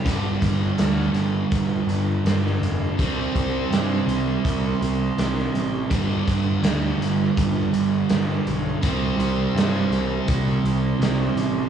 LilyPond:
<<
  \new Staff \with { instrumentName = "Distorted electric guitar" } { \clef bass \time 4/4 \key c \major \tempo 4 = 82 <g, d g>1 | <c g c'>1 | <g, d g>1 | <c g c'>1 | }
  \new Staff \with { instrumentName = "Distorted electric guitar" } { \clef bass \time 4/4 \key c \major <g, d g>1 | <c g c'>1 | <g, d g>1 | <c g c'>1 | }
  \new Staff \with { instrumentName = "Picked electric bass" } { \clef bass \time 4/4 \key c \major g,,8 g,,8 d,8 g,,8 g,,8 g,,8 g,,8 f,,8 | c,8 c,8 g,8 c,8 c,8 c,8 c,8 a,,8 | g,,8 g,,8 d,8 g,,8 g,,8 g,,8 g,,8 b,,8 | c,8 c,8 g,8 c,8 c,8 c,8 c,8 a,,8 | }
  \new DrumStaff \with { instrumentName = "Drums" } \drummode { \time 4/4 <hh bd>8 <hh bd>8 <hh sn>8 hh8 <hh bd>8 hh8 <hh sn>16 sn16 hh8 | <hh bd>8 <hh bd>8 <hh sn>8 hh8 <hh bd>8 hh8 <hh sn>16 sn16 hh8 | <hh bd>8 <hh bd>8 <hh sn>8 hh8 <hh bd>8 hh8 <hh sn>8 hh8 | <hh bd>8 hh8 <hh sn>8 hh8 <hh bd>8 hh8 <hh sn>8 hh8 | }
>>